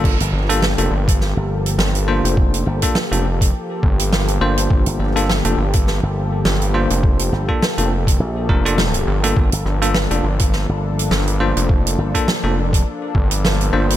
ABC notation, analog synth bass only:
X:1
M:4/4
L:1/16
Q:"Swing 16ths" 1/4=103
K:Gm
V:1 name="Analog synth bass" clef=bass
G,,, z G,,,3 F,,, G,,,3 z3 G,,,3 F,,,- | F,,,2 z3 F,,,3 z2 G,,,4 G,,,2 | G,,, z G,,,3 F,,, G,,,3 z3 G,,,3 F,,,- | F,,,2 z3 F,,,3 z2 F,,,4 G,,,2 |
G,,, z G,,,3 F,,, G,,,3 z3 G,,,3 F,,,- | F,,,2 z3 F,,,3 z2 G,,,4 G,,,2 |]